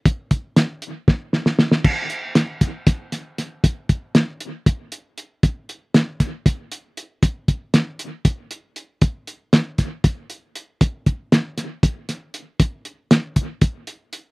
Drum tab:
CC |--------------|x-------------|--------------|--------------|
HH |x-x-x-x-------|--x-x-x-x-x-x-|x-x-x-x-x-x-x-|x-x-x-x-x-x-x-|
SD |----o---o-oooo|----o-o-o-o-o-|----o---------|----o-o-------|
BD |o-o-----o-----|o-----o-o-----|o-o-----o-----|o-----o-o-----|

CC |--------------|--------------|--------------|--------------|
HH |x-x-x-x-x-x-x-|x-x-x-x-x-x-x-|x-x-x-x-x-x-x-|x-x-x-x-x-x-x-|
SD |----o---------|----o-o-------|----o-o---o---|----o---------|
BD |o-o-----o-----|o-----o-o-----|o-o-----o-----|o-----o-o-----|